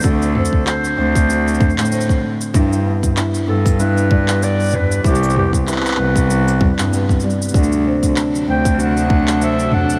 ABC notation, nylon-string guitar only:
X:1
M:4/4
L:1/8
Q:"Swing 16ths" 1/4=96
K:Dmix
V:1 name="Nylon-string guitar"
[D,A,CF] C F C F A, C A, | [G,,E] B, E B, E G, B, G, | [C,E] B, E B, E G, B, G, | [D,F] C2 C F A, C A, |]